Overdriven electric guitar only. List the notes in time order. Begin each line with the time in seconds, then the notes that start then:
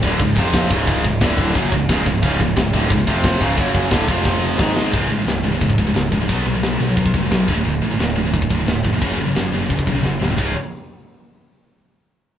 0.03 D2 A2 D3
0.20 C#2 G#2
0.37 F2 C3 F3
0.71 C#2 G#2 C#3
1.05 C#2 G#2
1.21 D2 A2 D3
1.56 F#2 C#3 F#3
1.71 C#2 G#2
1.89 C#2 G#2 C#3
2.05 C#2 G#2
2.22 C#2 G#2 C#3
2.40 C#2 G#2
2.56 C#2 G#2
2.73 D2 A2 D3
2.90 C#2 G#2
3.07 F2 C3 F3
3.40 C#2 G#2 C#3
3.57 F#2 C#3 F#3
3.90 D2 A2 D3
4.08 F2 C3 F3
4.59 G#2 D#3 G#3